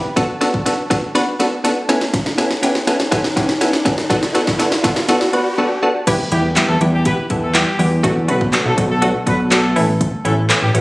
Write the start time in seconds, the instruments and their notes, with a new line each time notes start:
Already playing: riser
0.16 synth stab B3 D4 F#4 A4, kick, snare, closed hi-hat
0.41 synth stab B3 D4 F#4 A4, snare, closed hi-hat
0.54 kick
0.66 synth stab B3 D4 F#4 A4, snare, closed hi-hat
0.90 synth stab B3 D4 F#4 A4, kick, snare, closed hi-hat
1.15 synth stab B3 D4 F#4 B4, snare, closed hi-hat
1.39 synth stab B3 D4 F#4 A4, snare, closed hi-hat
1.64 synth stab B3 D4 F#4 A4, snare, closed hi-hat
1.89 synth stab B3 C#4 E4 A4, snare, closed hi-hat
2.01 snare
2.14 kick, snare, closed hi-hat
2.26 snare
2.38 synth stab B3 C#4 E4 A4, snare, closed hi-hat
2.51 snare
2.62 synth stab B3 C#4 E4 G4, snare, closed hi-hat
2.75 snare
2.87 synth stab B3 C#4 E4 A4, snare, closed hi-hat
3.00 snare
3.11 synth stab B3 C#4 E4 A4, kick, snare, closed hi-hat
3.24 snare
3.36 synth stab B3 C#4 E4 G4, kick, snare, closed hi-hat
3.49 snare
3.61 synth stab B3 C#4 E4 A4, snare, closed hi-hat
3.73 snare
3.85 synth stab B3 C#4 E4 A4, kick, snare, closed hi-hat
3.98 snare
4.10 synth stab B3 D4 F#4 A4, kick, snare, closed hi-hat
4.23 snare
4.34 synth stab B3 D4 F#4 A4, snare, closed hi-hat
4.47 kick, snare
4.59 synth stab B3 D4 F#4 A4, snare, closed hi-hat
4.72 snare
4.84 synth stab B3 D4 F#4 A4, kick, snare, closed hi-hat
4.96 snare
5.08 synth stab B3 D4 F#4 A4, snare, closed hi-hat
5.21 snare
5.33 synth stab B3 D4 F#4 B4, closed hi-hat
5.58 synth stab B3 D4 F#4 A4
5.82 synth stab B3 D4 F#4 A4
6.07 synth stab E3 G3 B3 E4 G4, kick, closed hi-hat, crash, impact
6.32 analog synth bass E2, synth stab E3 G3 B3 E4 G4, horn section G3 G4, closed hi-hat
6.56 synth stab E3 G3 B3 E4 G4, clap, closed hi-hat
6.69 analog synth bass E2, horn section A3 A4
6.81 analog synth bass E2, synth stab E3 G3 B3 E4 G4, closed hi-hat
6.93 horn section G3 G4
7.05 synth stab E3 G3 B3 E4 G4, horn section B3 B4, kick, closed hi-hat
7.30 analog synth bass E2, synth stab E3 G3 B3 E4 A4, kick, closed hi-hat
7.43 horn section A3 A4
7.54 synth stab E3 G3 B3 E4 G4, horn section G3 G4, clap, closed hi-hat
7.79 analog synth bass E2, synth stab E3 G3 B3 E4 G4, open hi-hat
8.03 synth stab F#3 A3 B3 D4 F#4, kick, closed hi-hat
8.28 analog synth bass B1, synth stab F#3 A3 B3 D4 F#4, horn section B3 B4, closed hi-hat
8.41 kick
8.52 synth stab F#3 A3 B3 D4 F#4, clap, closed hi-hat
8.65 analog synth bass B1, horn section A3 A4
8.77 analog synth bass B1, synth stab F#3 A3 B3 D4 F#4, kick, closed hi-hat
8.90 horn section A3 A4
9.02 synth stab F#3 A3 B3 D4 F#4, closed hi-hat
9.26 analog synth bass B1, synth stab F#3 A3 B3 D4 F#4, horn section B3 B4, kick, closed hi-hat
9.51 synth stab F#3 A3 B3 D4 F#4, horn section A3 A4, clap, closed hi-hat
9.76 analog synth bass A1, synth stab E3 A3 B3 C#4 E4, open hi-hat
10.01 kick, closed hi-hat
10.25 analog synth bass A1, synth stab E3 A3 B3 C#4 E4, horn section A3 A4, closed hi-hat
10.49 synth stab E3 A3 B3 C#4 E4, clap, closed hi-hat
10.62 analog synth bass A1, horn section G3 G4
10.74 analog synth bass A1, synth stab E3 A3 B3 C#4 F#4, closed hi-hat